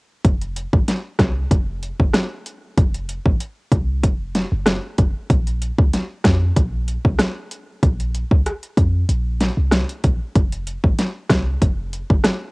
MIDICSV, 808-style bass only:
0, 0, Header, 1, 2, 480
1, 0, Start_track
1, 0, Tempo, 631579
1, 188, Time_signature, 4, 2, 24, 8
1, 9514, End_track
2, 0, Start_track
2, 0, Title_t, "808-style bass"
2, 0, Program_c, 0, 38
2, 188, Note_on_c, 0, 29, 112
2, 501, Note_off_c, 0, 29, 0
2, 556, Note_on_c, 0, 32, 89
2, 652, Note_off_c, 0, 32, 0
2, 907, Note_on_c, 0, 36, 93
2, 1112, Note_off_c, 0, 36, 0
2, 1148, Note_on_c, 0, 29, 107
2, 1461, Note_off_c, 0, 29, 0
2, 1517, Note_on_c, 0, 30, 92
2, 1612, Note_off_c, 0, 30, 0
2, 2108, Note_on_c, 0, 29, 107
2, 2421, Note_off_c, 0, 29, 0
2, 2475, Note_on_c, 0, 32, 89
2, 2571, Note_off_c, 0, 32, 0
2, 2826, Note_on_c, 0, 36, 95
2, 3067, Note_on_c, 0, 29, 100
2, 3078, Note_off_c, 0, 36, 0
2, 3380, Note_off_c, 0, 29, 0
2, 3435, Note_on_c, 0, 30, 93
2, 3640, Note_off_c, 0, 30, 0
2, 3789, Note_on_c, 0, 29, 92
2, 3897, Note_off_c, 0, 29, 0
2, 4028, Note_on_c, 0, 34, 108
2, 4341, Note_off_c, 0, 34, 0
2, 4395, Note_on_c, 0, 37, 83
2, 4491, Note_off_c, 0, 37, 0
2, 4746, Note_on_c, 0, 41, 99
2, 4952, Note_off_c, 0, 41, 0
2, 4988, Note_on_c, 0, 34, 112
2, 5301, Note_off_c, 0, 34, 0
2, 5357, Note_on_c, 0, 36, 84
2, 5452, Note_off_c, 0, 36, 0
2, 5949, Note_on_c, 0, 34, 109
2, 6261, Note_off_c, 0, 34, 0
2, 6316, Note_on_c, 0, 37, 91
2, 6412, Note_off_c, 0, 37, 0
2, 6668, Note_on_c, 0, 41, 89
2, 6872, Note_off_c, 0, 41, 0
2, 6908, Note_on_c, 0, 34, 107
2, 7221, Note_off_c, 0, 34, 0
2, 7275, Note_on_c, 0, 36, 89
2, 7480, Note_off_c, 0, 36, 0
2, 7630, Note_on_c, 0, 34, 93
2, 7737, Note_off_c, 0, 34, 0
2, 7869, Note_on_c, 0, 29, 108
2, 8181, Note_off_c, 0, 29, 0
2, 8237, Note_on_c, 0, 32, 89
2, 8332, Note_off_c, 0, 32, 0
2, 8587, Note_on_c, 0, 36, 93
2, 8792, Note_off_c, 0, 36, 0
2, 8829, Note_on_c, 0, 29, 103
2, 9141, Note_off_c, 0, 29, 0
2, 9197, Note_on_c, 0, 30, 94
2, 9292, Note_off_c, 0, 30, 0
2, 9514, End_track
0, 0, End_of_file